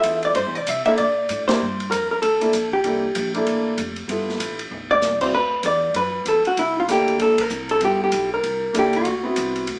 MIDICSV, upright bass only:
0, 0, Header, 1, 3, 480
1, 0, Start_track
1, 0, Tempo, 310559
1, 552, Time_signature, 4, 2, 24, 8
1, 15135, End_track
2, 0, Start_track
2, 0, Title_t, "Upright bass"
2, 0, Program_c, 0, 32
2, 52, Note_on_c, 0, 40, 81
2, 527, Note_off_c, 0, 40, 0
2, 546, Note_on_c, 0, 43, 66
2, 717, Note_off_c, 0, 43, 0
2, 717, Note_on_c, 0, 40, 49
2, 875, Note_off_c, 0, 40, 0
2, 882, Note_on_c, 0, 36, 56
2, 1026, Note_off_c, 0, 36, 0
2, 1051, Note_on_c, 0, 48, 87
2, 1318, Note_off_c, 0, 48, 0
2, 1524, Note_on_c, 0, 46, 76
2, 1984, Note_off_c, 0, 46, 0
2, 2001, Note_on_c, 0, 45, 84
2, 2463, Note_off_c, 0, 45, 0
2, 2489, Note_on_c, 0, 43, 73
2, 2947, Note_off_c, 0, 43, 0
2, 2970, Note_on_c, 0, 41, 88
2, 3427, Note_off_c, 0, 41, 0
2, 3445, Note_on_c, 0, 38, 67
2, 3905, Note_off_c, 0, 38, 0
2, 3913, Note_on_c, 0, 34, 75
2, 4378, Note_off_c, 0, 34, 0
2, 4394, Note_on_c, 0, 36, 75
2, 4859, Note_off_c, 0, 36, 0
2, 4881, Note_on_c, 0, 34, 92
2, 5343, Note_off_c, 0, 34, 0
2, 5356, Note_on_c, 0, 33, 67
2, 5820, Note_off_c, 0, 33, 0
2, 5833, Note_on_c, 0, 29, 86
2, 6292, Note_off_c, 0, 29, 0
2, 6301, Note_on_c, 0, 31, 73
2, 6764, Note_off_c, 0, 31, 0
2, 6774, Note_on_c, 0, 33, 75
2, 7248, Note_off_c, 0, 33, 0
2, 7278, Note_on_c, 0, 35, 70
2, 7741, Note_off_c, 0, 35, 0
2, 7756, Note_on_c, 0, 36, 76
2, 8220, Note_off_c, 0, 36, 0
2, 8230, Note_on_c, 0, 38, 75
2, 8697, Note_off_c, 0, 38, 0
2, 8710, Note_on_c, 0, 40, 82
2, 9177, Note_off_c, 0, 40, 0
2, 9183, Note_on_c, 0, 42, 69
2, 9654, Note_off_c, 0, 42, 0
2, 9667, Note_on_c, 0, 40, 79
2, 9945, Note_off_c, 0, 40, 0
2, 10157, Note_on_c, 0, 36, 71
2, 10620, Note_off_c, 0, 36, 0
2, 10634, Note_on_c, 0, 38, 83
2, 11099, Note_off_c, 0, 38, 0
2, 11108, Note_on_c, 0, 34, 68
2, 11576, Note_off_c, 0, 34, 0
2, 11597, Note_on_c, 0, 36, 84
2, 12060, Note_off_c, 0, 36, 0
2, 12081, Note_on_c, 0, 31, 76
2, 12543, Note_off_c, 0, 31, 0
2, 12563, Note_on_c, 0, 35, 88
2, 13024, Note_off_c, 0, 35, 0
2, 13035, Note_on_c, 0, 36, 69
2, 13500, Note_off_c, 0, 36, 0
2, 13518, Note_on_c, 0, 37, 81
2, 13981, Note_off_c, 0, 37, 0
2, 14003, Note_on_c, 0, 38, 78
2, 14464, Note_off_c, 0, 38, 0
2, 14490, Note_on_c, 0, 36, 89
2, 14947, Note_off_c, 0, 36, 0
2, 14957, Note_on_c, 0, 38, 73
2, 15135, Note_off_c, 0, 38, 0
2, 15135, End_track
3, 0, Start_track
3, 0, Title_t, "Muted upright bass strokes"
3, 1346, Note_on_c, 9, 29, 33
3, 1501, Note_off_c, 9, 29, 0
3, 9975, Note_on_c, 9, 29, 35
3, 10129, Note_off_c, 9, 29, 0
3, 15135, End_track
0, 0, End_of_file